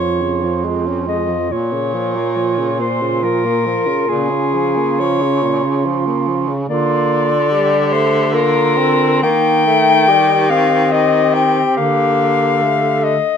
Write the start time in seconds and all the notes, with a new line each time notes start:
Already playing: F2 F4 C#5
0.00 F3
0.21 C#3
0.43 F3
0.64 G#3
0.86 C#4
1.07 G#3 D#5
1.29 F3
1.50 A#2 F4 C#5
1.73 C#3
1.94 F3
2.15 A#3
2.36 F3
2.58 C#3
2.80 A#2 C5
3.02 C#3
3.23 F3 A#4
3.45 A#3
3.66 F3
3.86 C#3
4.08 A#2 C#3 G#4
4.30 C#3
4.54 F3
4.76 A#3
5.00 F3 C#5
5.21 C#3
5.42 A#2
5.63 C#3
5.85 F3
6.07 A#3
6.27 F3
6.48 C#3
6.69 D3 A#3 F4 D5
7.52 G3 G4
7.92 A3 C5
8.33 A#3 F4 A#4
8.78 C4
9.22 D#3 A#3 D#4 G5
9.66 A3
10.08 G3 G4
10.50 C4 F5
10.92 G4 D#5
11.34 G5
11.77 D3 A#3 F5
12.62 A3
13.04 D#5